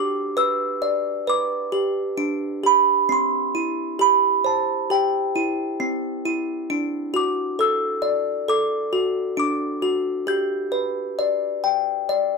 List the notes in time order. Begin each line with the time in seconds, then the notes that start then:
Already playing: D4 G4 D6
0.37 B4 E6
0.82 D5
1.27 B4 D6
1.72 G4
2.17 D4
2.64 G4 B5
3.09 C4 C6
3.55 E4
3.99 G4 B5
4.44 C5 A5
4.90 G4 G5
5.35 E4
5.80 C4
6.25 E4
6.70 D4
7.14 F#4 D6
7.59 A4 E6
8.02 D5
8.48 A4 D6
8.93 F#4
9.37 D4 D6
9.82 F#4
10.27 G4 G6
10.72 B4
11.19 D5
11.64 G5
12.09 D5